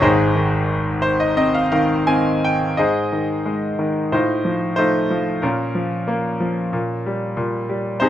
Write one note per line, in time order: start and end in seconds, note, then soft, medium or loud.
0.01 2.74 G#1 medium
0.01 2.73 G#2 medium
0.01 2.04 D#4 medium
0.01 2.04 G#4 medium
0.01 1.00 C5 medium
0.35 1.68 D#3 medium
1.02 1.18 C5 medium
1.20 1.35 D#5 medium
1.37 2.06 C4 medium
1.37 1.53 D#5 medium
1.54 1.70 F5 medium
1.72 2.75 D#3 medium
1.72 2.05 F5 medium
2.07 2.76 C4 medium
2.07 2.41 G#5 medium
2.44 2.76 G5 medium
2.77 4.08 G#2 medium
2.77 4.08 G#4 medium
2.77 4.08 C5 soft
2.77 4.15 D#5 medium
3.13 3.77 D#3 soft
3.46 4.10 G#3 soft
3.79 4.11 D#3 soft
4.12 5.39 A2 medium
4.12 4.77 D#4 medium
4.12 4.76 F4 soft
4.12 4.75 C5 medium
4.45 5.09 F3 soft
4.76 5.42 A3 medium
4.76 5.40 D#4 medium
4.76 5.39 F4 soft
4.76 5.44 C5 medium
5.10 5.42 F3 soft
5.42 6.70 A#2 medium
5.42 7.65 C#4 soft
5.42 7.65 F4 soft
5.42 7.65 A#4 medium
5.75 6.39 F3 soft
6.08 6.71 A#3 medium
6.40 6.72 F3 soft
6.73 7.35 A#2 medium
7.06 7.68 G3 soft
7.37 7.99 A#2 medium
7.69 8.01 G3 soft
8.00 8.09 C3 medium
8.00 8.09 D#4 medium
8.00 8.09 G#4 medium
8.00 8.09 C5 medium